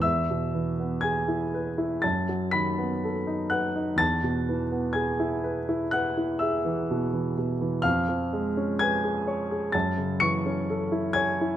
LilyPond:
\new Staff \with { instrumentName = "Grand piano" } { \time 4/4 \key e \major \tempo 4 = 62 << { <e'' e'''>4 <gis'' gis'''>4 <a'' a'''>8 <b'' b'''>4 <fis'' fis'''>8 | <a'' a'''>4 <gis'' gis'''>4 <fis'' fis'''>8 <e'' e'''>4 r8 | <eis'' eis'''>4 <gis'' gis'''>4 <a'' a'''>8 <cis''' cis''''>4 <gis'' gis'''>8 | } \\ { e,16 b,16 e16 b16 gis'16 e'16 b'16 e'16 fis,16 fis16 dis16 b16 a'16 dis'16 b'16 dis'16 | e,16 b,16 e16 b16 gis'16 e'16 b'16 e'16 b'16 e'16 gis'16 e16 b,16 e16 b,16 e16 | eis,16 eis16 gis16 cis'16 b'16 gis'16 cis''16 gis'16 fis,16 cis16 e16 cis'16 a'16 e'16 cis''16 e'16 | } >> }